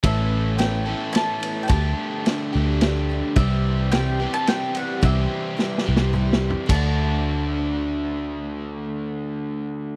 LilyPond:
<<
  \new Staff \with { instrumentName = "Mandolin" } { \time 3/4 \key d \mixolydian \tempo 4 = 108 e''4 g''4 a''8.~ a''32 g''32 | a''4. r4. | e''4 g''8. a''16 g''8 fis''8 | e''2~ e''8 r8 |
a''2.~ | a''2. | }
  \new Staff \with { instrumentName = "Twelve-string acoustic guitar" } { \time 3/4 \key d \mixolydian <a, e b cis' e'>4 <e b cis' e'>8 <b cis' e'>8 <e b cis' e'>8 <b cis' e'>8 | <d a d' g'>4 <d a d' g'>8 <a d' g'>8 <d a d' g'>8 <a d' g'>8 | <c e g g'>4 <e g b g'>8 <g b g'>8 <e g b g'>8 <g b g'>8 | <c e g g'>4 <e g b g'>8 <g b g'>8 <e g g'>4 |
<d a d' fis'>2.~ | <d a d' fis'>2. | }
  \new Staff \with { instrumentName = "Overdriven electric guitar" } { \time 3/4 \key d \mixolydian <a, e a cis' a'>4. <a, e a cis' a'>4. | <d a d' g'>4. <d a d' g'>4. | <c e g c' g'>4. <c e g c' g'>4. | <c e g c' g'>4. <c e g c' g'>4. |
<d a d' fis'>2.~ | <d a d' fis'>2. | }
  \new Staff \with { instrumentName = "Picked electric bass" } { \clef bass \time 3/4 \key d \mixolydian a,,2 r4 | d,8 r4 d,4. | c,2 r4 | c,8 r4 c,4. |
d,2.~ | d,2. | }
  \new DrumStaff \with { instrumentName = "Drums" } \drummode { \time 3/4 <bd cymr>4 <cymr sn>4 <cymr sn>8 cymr8 | <bd cymr>4 <cymr sn>4 <cymr sn>4 | <bd cymr>4 <cymr sn>4 <cymr sn>8 cymr8 | <bd cymr>4 \tuplet 3/2 { sn8 sn8 sn8 toml8 sn8 tomfh8 } |
<cymc bd>4 r4 r4 | r4 r4 r4 | }
>>